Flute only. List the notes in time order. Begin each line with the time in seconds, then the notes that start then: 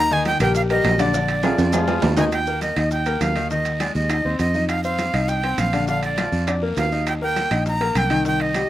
Already playing: A#5
0.13 G#5
0.27 G5
0.41 G5
0.56 F5
0.71 D#5
1.00 D5
2.18 G#5
2.33 G5
2.62 D#5
2.92 G5
3.21 F5
3.51 D#5
3.81 D5
3.95 D#5
4.40 D#5
4.69 F5
4.84 F5
5.29 G5
5.59 F5
5.88 F5
6.04 D5
6.78 F5
7.08 G5
7.23 G5
7.68 A#5
7.97 G5
8.27 G5
8.41 D#5